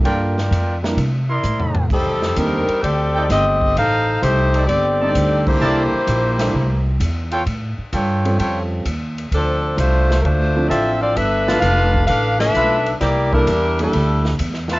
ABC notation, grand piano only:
X:1
M:4/4
L:1/8
Q:"Swing" 1/4=130
K:Cmix
V:1 name="Grand piano"
[G,B,DFA] z2 [G,B,DEB] z4 | z2 [G,CD_EA] z4 z | z4 z [G,CD_EA]3 | [G,B,DEA] z2 [G,B,DEA] z4 |
z3 [G,^B,^C^EA]3 z2 | z4 z [F,CDEA]3 | z [F,=B,DEA] z6 | z [G,B,DEA] z [G,B,DEA] z4 |]